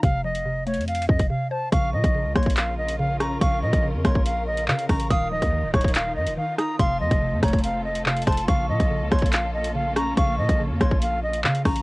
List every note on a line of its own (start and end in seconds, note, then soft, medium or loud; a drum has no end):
0.03 0.79 F1 loud
0.03 0.44 C3 medium
0.03 0.21 F5 loud
0.03 kick loud
0.03 closed hi-hat medium
0.24 1.30 F3 medium
0.24 0.64 D#5 medium
0.35 closed hi-hat medium
0.46 1.29 C3 medium
0.67 1.72 A3 medium
0.67 0.84 C#5 medium
0.67 closed hi-hat soft
0.74 1.07 F2 loud
0.74 closed hi-hat medium
0.81 closed hi-hat medium
0.88 1.06 F5 medium
0.88 closed hi-hat medium
0.95 closed hi-hat medium
1.02 closed hi-hat medium
1.09 1.19 F2 loud
1.09 1.27 D#5 medium
1.09 kick loud
1.19 1.30 F1 loud
1.19 kick medium
1.19 closed hi-hat medium
1.30 1.72 C3 medium
1.30 1.48 F5 medium
1.51 1.72 C5 medium
1.51 1.69 A5 medium
1.72 1.95 A#1 loud
1.72 2.14 C#3 medium
1.72 5.07 C#3 medium
1.72 5.07 C#4 medium
1.72 5.07 F4 medium
1.72 6.75 A#4 medium
1.72 1.90 F5 loud
1.72 2.32 C#6 loud
1.72 kick loud
1.72 closed hi-hat medium
1.93 2.03 A#2 loud
1.93 2.99 F3 medium
1.93 2.33 D#5 medium
2.04 2.27 A#1 loud
2.04 kick loud
2.04 closed hi-hat medium
2.15 2.98 C#3 medium
2.25 2.35 C#2 loud
2.36 3.37 A#1 loud
2.36 3.41 A#3 loud
2.36 2.54 C#5 medium
2.36 2.56 C6 medium
2.36 kick loud
2.36 cross-stick loud
2.36 closed hi-hat soft
2.43 kick loud
2.43 closed hi-hat medium
2.50 closed hi-hat medium
2.57 2.75 F5 medium
2.57 clap loud
2.57 closed hi-hat medium
2.78 2.96 D#5 medium
2.88 closed hi-hat medium
2.99 3.40 C#3 medium
2.99 3.17 F5 medium
3.20 4.26 C#4 medium
3.20 3.38 A#5 medium
3.20 3.40 C#6 medium
3.20 cross-stick loud
3.20 closed hi-hat medium
3.41 3.64 A#1 loud
3.41 3.82 C#3 loud
3.41 3.59 F5 loud
3.41 4.01 C#6 loud
3.41 kick loud
3.41 closed hi-hat medium
3.62 3.73 A#2 loud
3.62 4.68 F3 medium
3.62 3.86 D#5 medium
3.73 3.96 A#1 loud
3.73 kick loud
3.73 closed hi-hat medium
3.84 4.67 C#3 medium
3.94 4.04 F2 loud
4.05 4.70 A#1 loud
4.05 5.10 A#3 medium
4.05 4.23 C#5 medium
4.05 4.25 C6 medium
4.05 kick loud
4.05 cross-stick loud
4.05 closed hi-hat medium
4.15 kick loud
4.26 4.44 F5 medium
4.26 closed hi-hat medium
4.47 4.65 D#5 medium
4.57 closed hi-hat medium
4.68 4.88 C#3 loud
4.68 5.10 C#3 medium
4.68 4.86 F5 medium
4.68 clap loud
4.79 closed hi-hat medium
4.89 5.09 A1 loud
4.89 5.10 C#4 medium
4.89 5.07 A#5 medium
4.89 5.09 C#6 medium
4.89 kick loud
4.89 cross-stick loud
4.89 closed hi-hat medium
4.89 open hi-hat medium
5.00 closed hi-hat medium
5.10 5.41 D#1 loud
5.10 6.78 D#3 medium
5.10 5.51 D#3 medium
5.10 6.78 D#4 medium
5.10 11.82 F4 medium
5.10 5.28 F5 loud
5.10 5.70 D#6 loud
5.10 kick loud
5.10 closed hi-hat medium
5.32 6.37 F3 medium
5.32 5.71 D#5 medium
5.42 5.65 D#2 loud
5.42 kick loud
5.42 closed hi-hat medium
5.53 6.36 D#3 medium
5.63 5.73 C#1 loud
5.74 6.17 D#1 loud
5.74 6.79 F#3 medium
5.74 5.91 C#5 medium
5.74 5.94 C#6 medium
5.74 kick loud
5.74 cross-stick loud
5.74 closed hi-hat soft
5.81 kick loud
5.81 closed hi-hat medium
5.88 closed hi-hat medium
5.95 6.13 F5 medium
5.95 clap loud
5.95 closed hi-hat loud
6.16 6.28 F#2 loud
6.16 6.34 D#5 medium
6.26 6.37 D#1 loud
6.26 closed hi-hat medium
6.37 6.79 D#3 medium
6.37 6.55 F5 medium
6.58 6.79 D#4 medium
6.58 6.76 A#5 medium
6.58 6.78 D#6 medium
6.58 cross-stick loud
6.58 closed hi-hat medium
6.79 7.02 F1 loud
6.79 7.21 C3 medium
6.79 8.47 A3 medium
6.79 8.47 C4 medium
6.79 11.82 A4 medium
6.79 6.97 F5 loud
6.79 7.39 C6 loud
6.79 kick loud
6.79 closed hi-hat medium
7.00 7.10 F2 loud
7.00 8.06 F3 medium
7.00 7.40 D#5 medium
7.11 7.34 F1 loud
7.11 kick loud
7.11 closed hi-hat medium
7.22 8.05 C3 medium
7.32 7.42 F2 loud
7.43 8.24 F1 loud
7.43 8.48 A3 medium
7.43 7.61 C#5 medium
7.43 7.63 A#5 medium
7.43 kick loud
7.43 cross-stick loud
7.43 closed hi-hat medium
7.48 closed hi-hat medium
7.53 kick loud
7.53 closed hi-hat medium
7.59 closed hi-hat soft
7.64 7.82 F5 medium
7.64 closed hi-hat medium
7.85 8.03 D#5 medium
7.95 closed hi-hat medium
8.06 8.48 C3 medium
8.06 8.24 F5 medium
8.06 clap loud
8.17 closed hi-hat medium
8.22 closed hi-hat medium
8.27 8.47 F1 loud
8.27 8.48 C5 medium
8.27 8.45 A5 medium
8.27 8.47 C6 medium
8.27 kick loud
8.27 cross-stick loud
8.27 closed hi-hat medium
8.32 closed hi-hat medium
8.37 closed hi-hat medium
8.48 8.71 A#1 loud
8.48 8.90 C#3 medium
8.48 11.82 A#3 medium
8.48 11.82 C#4 medium
8.48 8.66 F5 loud
8.48 9.08 C#6 loud
8.48 kick loud
8.48 closed hi-hat medium
8.69 8.79 A#2 loud
8.69 9.75 F3 medium
8.69 9.09 D#5 medium
8.80 9.03 A#1 loud
8.80 kick loud
8.80 closed hi-hat medium
8.91 9.74 C#3 medium
9.01 9.11 C#2 loud
9.12 10.13 A#1 loud
9.12 10.17 A#3 medium
9.12 9.30 C#5 medium
9.12 9.32 C6 medium
9.12 kick loud
9.12 cross-stick loud
9.12 closed hi-hat soft
9.19 kick loud
9.19 closed hi-hat medium
9.26 closed hi-hat medium
9.33 9.51 F5 medium
9.33 clap loud
9.33 closed hi-hat medium
9.54 9.72 D#5 medium
9.64 closed hi-hat medium
9.75 10.16 C#3 medium
9.75 9.93 F5 medium
9.96 11.02 C#4 medium
9.96 10.14 A#5 medium
9.96 10.16 C#6 medium
9.96 cross-stick loud
9.96 closed hi-hat medium
10.17 10.40 A#1 loud
10.17 10.59 C#3 loud
10.17 10.35 F5 medium
10.17 10.77 C#6 loud
10.17 kick loud
10.17 closed hi-hat medium
10.38 10.48 A#2 loud
10.38 11.44 F3 medium
10.38 10.62 D#5 medium
10.49 10.72 A#1 loud
10.49 kick loud
10.49 closed hi-hat medium
10.60 11.43 C#3 medium
10.70 10.80 F2 loud
10.81 11.46 A#1 loud
10.81 11.82 A#3 medium
10.81 10.99 C#5 medium
10.81 11.01 C6 medium
10.81 kick loud
10.81 cross-stick loud
10.81 closed hi-hat medium
10.91 kick loud
11.02 11.20 F5 medium
11.02 closed hi-hat medium
11.23 11.41 D#5 medium
11.33 closed hi-hat medium
11.44 11.64 C#3 loud
11.44 11.82 C#3 medium
11.44 11.62 F5 medium
11.44 clap loud
11.55 closed hi-hat medium
11.65 11.82 A1 loud
11.65 11.82 C#4 medium
11.65 11.82 A#5 medium
11.65 11.82 C#6 medium
11.65 kick loud
11.65 cross-stick loud
11.65 closed hi-hat medium
11.65 open hi-hat medium
11.76 closed hi-hat medium